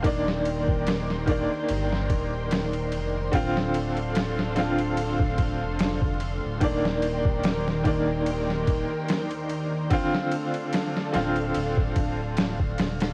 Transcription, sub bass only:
X:1
M:4/4
L:1/16
Q:"Swing 16ths" 1/4=73
K:Dphr
V:1 name="Sub bass" clef=bass
E,,,6- E,,, z G,,,2 E,,,4 F,,,2 | D,,,8- D,,,3 F,,,4 D,,, | E,,,8- E,,,3 z4 z | z6 D,,,2 D,,,6 E,,,2 |]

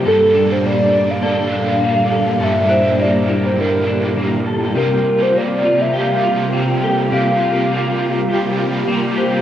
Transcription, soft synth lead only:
X:1
M:4/4
L:1/16
Q:1/4=102
K:Gdor
V:1 name="Soft synth lead"
A3 c d3 f8- f | e4 d3 c B4 z4 | B3 c d3 e f4 g4 | f12 z4 |]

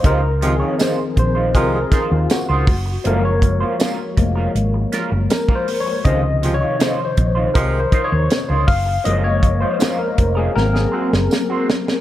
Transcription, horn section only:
X:1
M:4/4
L:1/16
Q:1/4=80
K:Db
V:1 name="Horn section" clef=bass
[C,F,A,F] z [C,F,A,F] z4 z [C,F,A,F]2 z6 | z16 | [C,F,A,F] z [C,F,A,F] z4 z [C,F,A,F]2 z6 | z16 |]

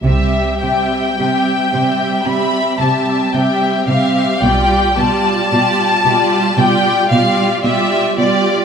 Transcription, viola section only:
X:1
M:4/4
L:1/8
Q:1/4=56
K:C
V:1 name="Viola section"
[G,C] [G,C] [G,C] [G,C] [G,C] [G,C] [G,C] [G,C] | [G,F] [G,F] [G,F] [G,F] [G,F] [G,F] [G,F] [G,F] |]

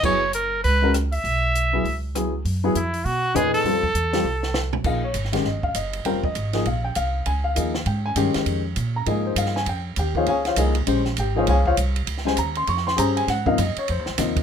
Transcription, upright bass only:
X:1
M:4/4
L:1/8
Q:"Swing" 1/4=199
K:F#mix
V:1 name="Upright bass" clef=bass
F,,,4 C,,4 | B,,,4 C,,4 | F,,2 ^E,,2 B,,2 =E,,2 | =F,,2 E,,2 =C,,4 |
[K:Bbdor] B,,,2 A,,,2 G,,,2 _G,,,2 | F,,,2 A,,,2 B,,,2 C,,2 | D,,2 E,,2 A,,2 G,, z | F,,2 B,,2 A,,2 G,,2 |
F,,2 E,,2 D,,2 C,,2 | B,,,2 A,,,2 C,,2 C,,2 | D,,2 E,,2 F,,2 G,,2 | A,,2 _G,, z (3F,, E,, C,, E,,2 |]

